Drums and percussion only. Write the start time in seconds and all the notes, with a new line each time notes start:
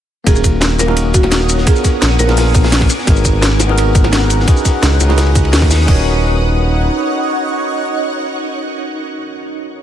0.27 kick, closed hi-hat, ride
0.36 shaker
0.44 kick, closed hi-hat, ride, shaker
0.61 snare, closed hi-hat, ride
0.70 ride
0.79 snare, closed hi-hat, ride, high bongo, shaker
0.88 high bongo
0.96 closed hi-hat, ride
1.14 kick, closed hi-hat, ride, shaker
1.23 snare, ride, high bongo
1.32 snare, closed hi-hat, ride
1.49 closed hi-hat, ride, shaker
1.58 snare
1.67 kick, closed hi-hat, ride
1.76 shaker
1.84 kick, snare, closed hi-hat, ride, shaker
2.02 snare, closed hi-hat, ride
2.19 closed hi-hat, ride, high bongo, shaker
2.28 snare, high bongo
2.37 snare, closed hi-hat, open hi-hat
2.54 kick, closed hi-hat, ride, high bongo, shaker
2.64 snare, open hi-hat
2.72 snare, closed hi-hat
2.81 kick, snare, ride
2.90 closed hi-hat, ride, shaker
2.98 snare
3.07 kick, closed hi-hat, ride
3.16 shaker
3.25 kick, closed hi-hat, ride, shaker
3.42 snare, closed hi-hat, ride
3.51 ride
3.59 snare, closed hi-hat, ride, high bongo, shaker
3.69 high bongo
3.78 closed hi-hat, ride
3.95 kick, closed hi-hat, ride, shaker
4.04 snare, ride, high bongo
4.13 snare, closed hi-hat, ride
4.30 closed hi-hat, ride, shaker
4.40 snare
4.48 kick, closed hi-hat, ride
4.57 shaker
4.65 kick, snare, closed hi-hat, ride, shaker
4.83 snare, closed hi-hat, ride
5.00 closed hi-hat, ride, high bongo, shaker
5.09 snare, high bongo
5.18 snare, closed hi-hat, ride
5.26 ride
5.35 kick, closed hi-hat, ride, high bongo, shaker
5.45 ride
5.53 snare, closed hi-hat, open hi-hat
5.62 kick, snare
5.70 snare, closed hi-hat, open hi-hat, shaker
5.88 kick, crash